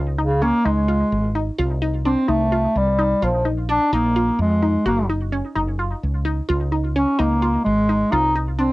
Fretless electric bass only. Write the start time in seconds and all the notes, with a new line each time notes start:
Already playing: C#2
0.65 C#2
1.12 G#1
1.59 C2
2.28 C2
2.76 C2
3.22 A#1
3.92 A#1
4.39 F2
4.86 F#1
5.56 F#1
6.03 C#2
6.50 C#2
7.19 C#2
7.66 G#1
8.13 C2